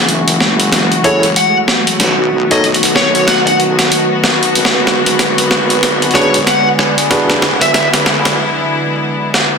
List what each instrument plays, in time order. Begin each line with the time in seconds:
Already playing: wobble bass F#1, string section E3 G#3 A3 F#4, ambient pad F#4 B4 E5 G#5
0.09 closed hi-hat
0.28 closed hi-hat
0.40 wobble bass F#1, snare
0.60 closed hi-hat
0.72 snare, closed hi-hat
0.92 closed hi-hat
1.04 tine electric piano E4 G#4 A4 C#5, lead electric guitar C#5, closed hi-hat
1.23 closed hi-hat
1.36 lead electric guitar F#5, closed hi-hat
1.68 snare
1.87 closed hi-hat
1.99 wobble bass B1, string section D#3 B3 F#4, snare, closed hi-hat
2.38 ambient pad B4
2.51 tine electric piano D#4 F#4 A4 C#5, lead electric guitar D#5, closed hi-hat
2.64 closed hi-hat
2.74 closed hi-hat
2.83 closed hi-hat
2.85 closed hi-hat
2.90 ambient pad D#5
2.96 wobble bass B1, lead electric guitar C#5, snare
3.15 lead electric guitar C#5, ambient pad A5, closed hi-hat
3.27 lead electric guitar F#5, snare, closed hi-hat
3.47 lead electric guitar F#5, closed hi-hat
3.60 closed hi-hat
3.79 snare, closed hi-hat
3.92 closed hi-hat
4.24 snare
4.43 closed hi-hat
4.55 wobble bass G#1, string section D3 G#3, closed hi-hat
4.65 snare
4.87 snare
5.06 closed hi-hat
5.19 snare, closed hi-hat
5.38 ambient pad G#5, closed hi-hat
5.48 wobble bass G#1, ambient pad D5, snare
5.70 closed hi-hat
5.83 snare, closed hi-hat
6.02 closed hi-hat
6.11 tine electric piano D4 F#4 B4, lead electric guitar C#5, closed hi-hat
6.15 tine electric piano G#4, snare, closed hi-hat
6.22 closed hi-hat
6.34 closed hi-hat
6.47 lead electric guitar F#5, snare, closed hi-hat
6.79 snare
6.98 closed hi-hat
7.10 wobble bass E1, tine electric piano D4 F#4 G#4 B4, string section E4, ambient pad E4, snare, closed hi-hat
7.30 snare
7.42 snare
7.61 lead electric guitar E5, closed hi-hat
7.74 lead electric guitar E5, snare, closed hi-hat
7.93 snare, closed hi-hat
8.06 wobble bass D2, snare
8.25 snare, closed hi-hat
9.34 snare